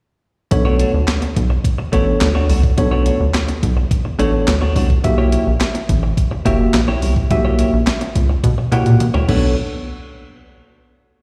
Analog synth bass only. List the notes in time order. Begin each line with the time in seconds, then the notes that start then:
0.52 B1
0.94 D2
1.37 B1
1.93 A1
2.21 D2
2.49 C2
2.78 B1
3.20 D2
3.63 B1
4.19 A1
4.48 D2
4.76 C2
5.04 B1
5.47 A#1
5.89 A1
6.46 F#1
6.74 A#1
7.02 C2
7.31 B1
7.73 A#1
8.16 C#2
8.44 B2
8.72 B2
8.86 A#2
9.14 D2
9.29 B1